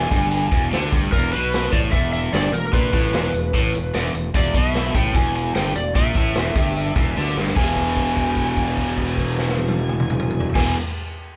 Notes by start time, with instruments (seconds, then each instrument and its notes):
Already playing: fingered electric bass E1, overdriven electric guitar E2, electric slide guitar G#5
0.11 fingered electric bass G1, overdriven electric guitar G2, kick, closed hi-hat
0.31 closed hi-hat
0.52 fingered electric bass E1, overdriven electric guitar E2, kick, closed hi-hat
0.72 fingered electric bass D2, overdriven electric guitar D3, snare, closed hi-hat
0.92 fingered electric bass G1, overdriven electric guitar G2, kick, closed hi-hat
1.12 fingered electric bass E1, overdriven electric guitar E2, electric slide guitar A#4, kick, closed hi-hat
1.32 fingered electric bass B1, overdriven electric guitar B2, electric slide guitar B4, closed hi-hat
1.53 snare, closed hi-hat
1.72 fingered electric bass A1, overdriven electric guitar A2, electric slide guitar D5, kick, closed hi-hat
1.92 fingered electric bass E1, overdriven electric guitar E2, electric slide guitar E5, kick, closed hi-hat
2.13 electric slide guitar E5, closed hi-hat
2.33 fingered electric bass G1, overdriven electric guitar G2, electric slide guitar D5, snare, closed hi-hat
2.53 fingered electric bass E1, overdriven electric guitar E2, electric slide guitar A#4, closed hi-hat
2.67 electric slide guitar A#4
2.73 fingered electric bass A#1, overdriven electric guitar A#2, electric slide guitar B4, kick, closed hi-hat
2.93 fingered electric bass A1, overdriven electric guitar A2, kick, closed hi-hat
3.04 snare
3.13 fingered electric bass E1, overdriven electric guitar E2, snare, closed hi-hat
3.34 fingered electric bass E1, overdriven electric guitar E2, closed hi-hat
3.54 fingered electric bass A1, overdriven electric guitar A2, kick, closed hi-hat
3.74 fingered electric bass E1, overdriven electric guitar E2, closed hi-hat
3.94 fingered electric bass E1, overdriven electric guitar E2, snare, closed hi-hat
4.14 fingered electric bass E1, overdriven electric guitar E2, closed hi-hat
4.34 fingered electric bass E1, overdriven electric guitar E2, electric slide guitar D5, kick, closed hi-hat
4.55 fingered electric bass B1, overdriven electric guitar B2, electric slide guitar E5, kick, closed hi-hat
4.75 snare, closed hi-hat
4.94 fingered electric bass A1, overdriven electric guitar A2, electric slide guitar G5, kick, closed hi-hat
5.14 fingered electric bass E1, overdriven electric guitar E2, electric slide guitar G#5, kick, closed hi-hat
5.35 electric slide guitar G#5, closed hi-hat
5.55 fingered electric bass G1, overdriven electric guitar G2, electric slide guitar G5, snare, closed hi-hat
5.76 fingered electric bass E1, overdriven electric guitar E2, electric slide guitar D5, closed hi-hat
5.95 fingered electric bass A#1, overdriven electric guitar A#2, electric slide guitar E5, kick, closed hi-hat
6.15 fingered electric bass A1, overdriven electric guitar A2, kick, closed hi-hat
6.35 fingered electric bass E1, overdriven electric guitar E2, snare, closed hi-hat
6.55 fingered electric bass G1, overdriven electric guitar G2, kick, closed hi-hat
6.76 closed hi-hat
6.96 fingered electric bass E1, overdriven electric guitar E2, kick, closed hi-hat
7.16 fingered electric bass D2, overdriven electric guitar D3, snare
7.27 snare
7.36 fingered electric bass G1, overdriven electric guitar G2, snare
7.47 snare
7.56 fingered electric bass E1, overdriven electric guitar E2 B2, electric slide guitar G#5, kick, crash
7.61 overdriven electric guitar E3
7.77 kick, crash
7.87 crash
7.97 kick, crash
8.07 crash
8.17 kick, crash
8.27 crash
8.37 kick, crash
8.47 crash
8.57 kick, crash
8.67 crash
8.77 kick, crash
8.87 crash
8.98 kick, crash
9.07 crash
9.18 kick, crash
9.28 crash
9.39 snare
9.49 snare
9.58 high tom
9.68 high tom
9.79 high tom
9.89 mid tom
10.00 mid tom
10.10 mid tom
10.19 mid tom
10.30 mid tom
10.40 floor tom
10.49 floor tom
10.55 fingered electric bass E1, overdriven electric guitar E2 B2 E3, electric slide guitar G#5, kick, snare, crash